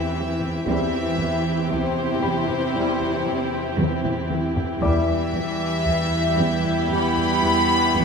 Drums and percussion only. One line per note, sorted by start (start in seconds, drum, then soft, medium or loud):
0.41 taiko low medium
0.67 taiko medium
1.19 taiko low medium
1.71 taiko medium
2.49 taiko low soft
3.01 taiko low soft
3.79 taiko mid medium
4.05 taiko low-mid medium
4.30 taiko mid medium
4.56 taiko low medium
4.82 taiko medium
5.34 taiko low medium
5.85 taiko medium
6.65 taiko low soft
7.18 taiko low soft
7.96 taiko medium